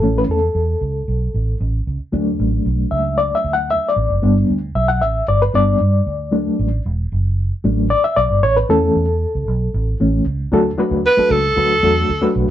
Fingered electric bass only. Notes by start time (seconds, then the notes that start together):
0.02 A1
0.28 E2
0.55 E2
0.81 C#2
1.08 B1
1.34 A1
1.60 A1
1.87 C#2
2.13 D2
2.40 A1
2.65 B1
2.92 C#2
3.44 D2
3.96 A1
4.10 F#1
4.23 G1
4.50 D2
4.75 B1
5.02 A1
5.28 G1
5.54 G1
5.80 G2
6.07 D2
6.59 A1
6.86 E1
7.12 F#1
7.64 A1
8.17 B1
8.30 G1
8.43 A1
8.69 E2
8.96 E2
9.35 C#2
9.48 B1
9.74 A1
10.00 A1
10.26 C#2
10.52 D2
10.91 D2
11.18 muted fingered electric bass stroke
11.30 C#2
11.57 D2
11.83 E2
12.09 D2
12.36 B1